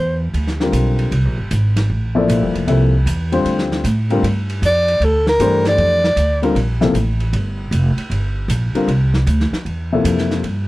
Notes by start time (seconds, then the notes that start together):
Already playing: E2 C5
0.34 D2, ride
0.47 snare
0.60 D3 G3 C4 F4 A#4, snare
0.72 B1, hi-hat pedal, ride
0.99 ride
1.11 C2, ride
1.25 A#1
1.38 G1
1.51 G#1, hi-hat pedal, ride
1.76 snare, ride
1.90 A1
2.15 F3 A#3 E4 A4 D5
2.28 A#1, hi-hat pedal, ride
2.42 G1
2.55 F1, ride
2.67 C2 C3 F3 A#3 E4 A4, ride
3.06 E2, hi-hat pedal, ride
3.32 D3 G3 C4 F4 C5, ride
3.44 D2, ride
3.58 snare
3.72 snare
3.84 A2, hi-hat pedal, ride
4.10 D3 G3 C4 F4 A#4, ride
4.23 G2, ride
4.49 ride
4.62 F2 D5, hi-hat pedal, ride
4.88 ride
5.00 D2, ride
5.04 A4
5.27 A#4, snare
5.39 G2 E3 A3 D4 G4 C5, hi-hat pedal, ride
5.65 D5, snare, ride
5.78 F2, ride
6.04 snare
6.16 D2, hi-hat pedal, ride
6.42 D3 G3 C4 F4 A#4, ride
6.55 A#1, ride
6.81 C3 F3 A#3 E4 A4, snare
6.94 A1, hi-hat pedal, ride
7.20 ride
7.33 G1, ride
7.71 F1, hi-hat pedal, ride
7.97 muted upright bass stroke, ride
8.10 G1, ride
8.48 A#1, hi-hat pedal, ride
8.75 D3 G3 C4 F4 A#4, muted upright bass stroke, ride
8.88 C2, ride
9.14 snare
9.27 D2, hi-hat pedal, ride
9.40 snare
9.52 muted upright bass stroke, snare
9.65 E2, ride
9.92 C3 F3 A#3 E4 A4
10.04 F2, hi-hat pedal, ride
10.18 snare
10.31 snare
10.43 G2, ride